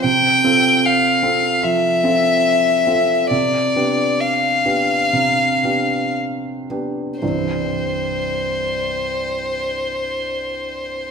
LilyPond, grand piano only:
\new Staff \with { instrumentName = "Grand piano" } { \time 4/4 \key c \major \tempo 4 = 63 c8 <c' f' a'>4 <c' f' a'>8 f8 <c' f' a'>4 <c' f' a'>8 | c8 <b d' g'>4 <b d' g'>8 c8 <b d' g'>4 <b d' g'>8 | <c, g, e g c' e'>1 | }